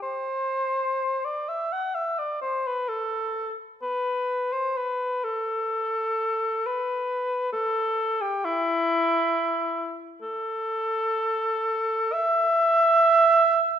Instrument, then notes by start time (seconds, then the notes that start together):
cor anglais
0.03 C5
1.25 D5
1.49 E5
1.73 F#5
1.95 E5
2.19 D5
2.41 C5
2.67 B4
2.89 A4
3.82 B4
4.52 C5
4.77 B4
5.24 A4
6.66 B4
7.53 A4
8.22 G4
8.45 E4
10.22 A4
12.13 E5